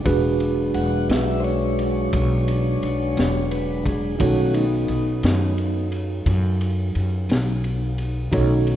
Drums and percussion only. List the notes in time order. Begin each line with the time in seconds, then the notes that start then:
0.05 kick, ride
0.40 ride
0.74 ride
1.09 snare, ride
1.44 ride
1.79 ride
2.13 kick, ride
2.48 ride
2.83 ride
3.17 snare, ride
3.51 ride
3.86 kick, ride
4.20 kick, ride
4.54 ride
4.88 ride
5.23 snare, ride
5.58 ride
5.92 ride
6.26 kick, ride
6.61 ride
6.95 ride
7.30 snare, ride
7.64 ride
7.98 ride
8.33 kick, ride
8.67 ride